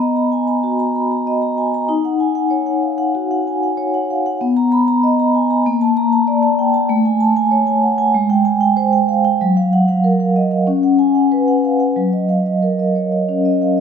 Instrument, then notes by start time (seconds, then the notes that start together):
vibraphone
Already playing: B3 A#5 B5
0.00 D#5
0.16 A#5
0.32 G#5
0.48 A#5
0.63 F#4
0.79 A#5
0.95 B5
1.11 A#5
1.27 D#5
1.42 A#5
1.58 G#5
1.74 A#5
1.89 D#4
2.05 F#5
2.20 G#5
2.35 F#5
2.51 C#5
2.66 F#5
2.83 F5
2.98 F#5
3.15 F#4
3.31 F#5
3.47 G#5
3.63 F#5
3.77 C#5
3.94 F#5
4.10 F5
4.26 F#5
4.41 B3
4.57 A#5
4.72 B5
4.88 A#5
5.03 D#5
5.20 A#5
5.35 G#5
5.50 A#5
5.66 A#3
5.81 A5
5.97 A#5
6.13 A5
6.27 D5
6.43 A5
6.59 G5
6.74 A5
6.89 A3
7.05 G#5
7.20 A5
7.36 G#5
7.51 C#5
7.67 G#5
7.83 F#5
7.98 G#5
8.14 G#3
8.30 G5
8.45 G#5
8.61 G5
8.77 C5
8.93 G5
9.08 F5
9.25 G5
9.41 F#3
9.57 F5
9.73 F#5
9.88 F5
10.04 A#4
10.20 F5
10.36 D#5
10.51 F5
10.67 C#4
10.83 F#5
10.99 G#5
11.15 F#5
11.32 B4
11.48 F#5
11.64 F5
11.80 F#5
11.96 F#3
12.13 D#5
12.29 F5
12.46 D#5
12.62 A#4
12.79 D#5
12.96 C#5
13.12 D#5
13.29 C#4
13.45 D#5
13.62 F5